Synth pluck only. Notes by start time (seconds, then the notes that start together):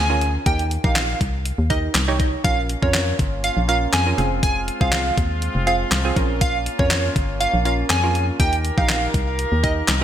0.10 C#4 F4 A#4
0.46 D#4 G4 A#4
0.84 D#4 G4 A#4
1.70 D#4 G4 A#4
2.08 D#4 G4 C#5
2.44 C#4 F4 A#4
2.82 C#4 F4 A#4
3.68 C#4 F4 A#4
4.06 C#4 F4 A#4
4.18 C4 F4 G#4
4.81 C4 F4 G#4
5.67 C4 F4 G#4
6.05 C4 F4 G#4
6.16 C#4 F4 A#4
6.79 C#4 F4 A#4
7.65 C#4 F4 A#4
8.03 C#4 F4 A#4
8.40 D#4 G4 A#4
8.78 D#4 G4 A#4
9.63 D#4 G4 A#4